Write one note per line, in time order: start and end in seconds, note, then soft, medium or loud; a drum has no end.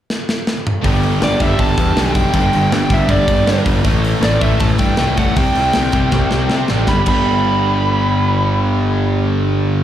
0.10 snare medium
0.29 snare medium
0.47 snare medium
0.67 mid tom medium
0.84 1.12 G1 medium
0.84 1.22 G2 medium
0.84 1.21 D3 medium
0.84 1.23 G3 medium
0.84 kick loud
0.84 open hi-hat medium
1.03 open hi-hat medium
1.21 1.35 G1 medium
1.21 1.39 G2 medium
1.21 1.39 D3 medium
1.21 1.41 G3 medium
1.21 1.42 D5 medium
1.21 snare loud
1.21 open hi-hat medium
1.40 1.54 G1 medium
1.40 1.57 G2 medium
1.40 1.58 D3 medium
1.40 1.59 G3 medium
1.40 1.60 E5 medium
1.40 kick medium
1.40 open hi-hat medium
1.59 1.73 G1 loud
1.59 1.95 G2 medium
1.59 1.95 D3 loud
1.59 1.96 G3 loud
1.59 1.98 A5 loud
1.59 kick loud
1.59 open hi-hat medium
1.78 1.91 E2 medium
1.78 kick medium
1.78 open hi-hat medium
1.96 2.25 B1 medium
1.96 2.14 G2 medium
1.96 2.14 D3 medium
1.96 2.15 G3 medium
1.96 2.36 G5 medium
1.96 snare loud
1.96 open hi-hat medium
2.15 2.32 G2 medium
2.15 2.33 D3 medium
2.15 2.33 G3 medium
2.15 kick medium
2.15 open hi-hat medium
2.33 2.48 G1 medium
2.33 2.69 G2 loud
2.33 2.70 D3 loud
2.33 2.70 G3 loud
2.33 2.72 G5 medium
2.33 kick loud
2.33 open hi-hat medium
2.53 2.67 G1 medium
2.53 open hi-hat medium
2.71 2.86 G1 loud
2.71 2.89 G2 medium
2.71 2.89 D3 medium
2.71 2.90 G3 medium
2.71 2.94 G5 medium
2.71 snare loud
2.71 open hi-hat medium
2.90 3.05 G1 medium
2.90 3.07 G2 medium
2.90 3.08 D3 medium
2.90 3.08 G3 medium
2.90 3.12 E5 medium
2.90 kick medium
2.90 open hi-hat medium
3.08 3.23 G1 loud
3.08 3.45 G2 loud
3.08 3.46 D3 medium
3.08 3.46 G3 loud
3.08 3.63 D5 medium
3.08 kick medium
3.08 open hi-hat medium
3.28 3.42 G1 loud
3.28 kick medium
3.28 open hi-hat medium
3.46 3.63 G2 medium
3.46 3.61 G2 medium
3.46 3.64 D3 medium
3.46 3.64 G3 medium
3.46 snare loud
3.46 open hi-hat medium
3.64 3.80 G1 medium
3.64 3.83 G2 medium
3.64 3.83 D3 loud
3.64 3.84 G3 medium
3.64 kick medium
3.64 open hi-hat medium
3.83 4.13 A1 medium
3.83 4.20 A2 medium
3.83 4.21 E3 loud
3.83 4.20 A3 loud
3.83 kick loud
3.83 open hi-hat medium
4.04 open hi-hat medium
4.21 4.36 A1 loud
4.21 4.40 A2 medium
4.21 4.42 E3 medium
4.21 4.41 A3 medium
4.21 4.42 D5 loud
4.21 snare loud
4.21 open hi-hat medium
4.41 4.56 A1 medium
4.41 4.58 A2 medium
4.41 4.59 E3 medium
4.41 4.60 A3 medium
4.41 4.61 E5 medium
4.41 kick medium
4.41 open hi-hat medium
4.60 4.75 A1 loud
4.60 4.97 A2 medium
4.60 4.98 E3 loud
4.60 4.99 A3 loud
4.60 4.65 A5 loud
4.60 kick loud
4.60 open hi-hat medium
4.78 4.94 G2 medium
4.78 5.18 G5 loud
4.78 kick medium
4.78 open hi-hat medium
4.97 5.27 C2 medium
4.97 5.17 A2 medium
4.97 5.17 E3 medium
4.97 5.18 A3 loud
4.97 snare loud
4.97 open hi-hat medium
5.17 5.36 A2 medium
5.17 5.36 E3 medium
5.17 5.36 A3 medium
5.17 5.36 F#5 loud
5.17 kick medium
5.17 open hi-hat medium
5.36 5.50 C2 loud
5.36 5.73 C3 loud
5.36 5.73 G3 loud
5.36 5.74 C4 loud
5.36 6.65 G5 medium
5.36 kick loud
5.36 open hi-hat medium
5.55 5.70 C2 loud
5.55 open hi-hat medium
5.73 5.89 C2 medium
5.73 5.92 C3 medium
5.73 5.92 G3 medium
5.73 5.93 C4 medium
5.73 snare loud
5.73 open hi-hat medium
5.92 6.07 C2 medium
5.92 6.10 C3 medium
5.92 6.11 G3 medium
5.92 6.12 C4 medium
5.92 kick medium
5.92 open hi-hat medium
6.12 6.26 C2 loud
6.12 6.49 C3 loud
6.12 6.50 G3 loud
6.12 6.50 C4 loud
6.12 kick loud
6.12 snare medium
6.31 6.46 C2 medium
6.31 snare medium
6.50 6.69 C3 medium
6.50 6.65 C3 medium
6.50 6.70 G3 medium
6.50 6.71 C4 loud
6.50 snare medium
6.68 6.84 A1 medium
6.68 6.87 C3 medium
6.68 6.88 G3 medium
6.68 6.88 C4 medium
6.68 snare medium
6.87 6.98 G1 medium
6.87 7.06 G2 medium
6.87 7.08 D3 loud
6.87 6.99 B5 medium
6.87 kick loud
6.87 snare medium
6.92 7.10 G3 loud
7.06 9.84 G1 loud
7.06 9.84 G2 medium
7.06 9.84 D3 loud
7.06 9.84 B5 medium
7.06 kick loud
7.06 crash medium
7.11 9.84 G3 loud